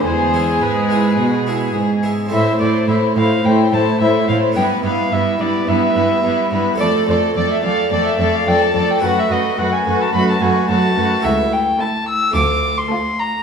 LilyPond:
<<
  \new Staff \with { instrumentName = "Violin" } { \time 4/4 \key a \minor \tempo 4 = 108 c''4 b'2 r4 | e''8 d''8 e''8 f''8 g''8 a''8 e''8 f''8 | g''8 f''8 e''8 d''8 e''4.~ e''16 r16 | d''8 c''8 d''16 e''16 f''8 d''16 e''8 f''16 g''16 a''8 g''16 |
fis''16 e''16 dis''8 fis''16 gis''8 a''16 b''16 a''16 gis''8 a''4 | \key d \minor e''8 g''8 a''8 e'''8 d'''8. c'''8. bes''8 | }
  \new Staff \with { instrumentName = "Violin section" } { \time 4/4 \key a \minor gis'2.~ gis'8 r8 | c''8 c''8 c''8 c''8 c''8 c''8 c''8 c''8 | b'8 b'8 b'8 b'8 b'8 b'8 b'8 b'8 | d''8 d''8 d''8 d''8 d''8 d''8 d''8 d''8 |
b'8 b'8 b'8 b'8 b'8 b'8 b'8 b'8 | \key d \minor r4 a'4 r4 a'4 | }
  \new Staff \with { instrumentName = "Violin section" } { \time 4/4 \key a \minor gis'2.~ gis'8 r8 | e'8 e'8 e'8 e'8 e'8 e'8 e'8 e'8 | e'8 e'8 e'8 e'8 e'8 e'8 e'8 e'8 | a'8 a'8 a'8 a'8 a'8 a'8 a'8 a'8 |
fis'8 fis'8 fis'8 fis'8 fis'8 fis'8 fis'8 fis'8 | \key d \minor r4 e'4 r4 f'4 | }
  \new Staff \with { instrumentName = "Viola section" } { \time 4/4 \key a \minor gis2.~ gis8 r8 | a8 a8 a8 a8 a8 a8 a8 a8 | b8 b8 b8 b8 b8 b8 b8 b8 | a8 a8 a8 a8 a8 a8 a8 a8 |
a8 a8 a8 a8 a8 a8 a8 a8 | \key d \minor r4 a4 r4 a4 | }
  \new Staff \with { instrumentName = "Harpsichord" } { \time 4/4 \key a \minor r8 <b e' gis'>4 <b e' gis'>8 r8 <b e' gis'>4 <b e' gis'>8 | <c' e' a'>1 | <b e' b'>1 | <a a' d''>1 |
<a fis' b'>1 | \key d \minor <a e' a'>2 <a f' a'>2 | }
  \new Staff \with { instrumentName = "Harpsichord" } { \clef bass \time 4/4 \key a \minor e,4 gis,4 b,4 gis,4 | a,8 a,8 a,8 a,8 a,8 r8 a,8 a,8 | g,8 g,8 g,8 g,8 g,8 g,8 g,8 g,8 | f,8 f,8 f,8 f,8 f,8 f,8 f,8 f,8 |
fis,8 fis,8 fis,8 fis,8 fis,8 fis,8 fis,8 fis,8 | \key d \minor cis,4 r4 d,4 r4 | }
  \new Staff \with { instrumentName = "Cello section" } { \clef bass \time 4/4 \key a \minor e,4 gis,4 b,4 gis,4 | a,8 a,8 a,8 a,8 a,8 a,8 a,8 a,8 | g,8 g,8 g,8 g,8 g,8 g,8 g,8 g,8 | f,8 f,8 f,8 f,8 f,8 f,8 f,8 f,8 |
fis,8 fis,8 fis,8 fis,8 fis,8 fis,8 fis,8 fis,8 | \key d \minor cis,4 r4 d,4 r4 | }
>>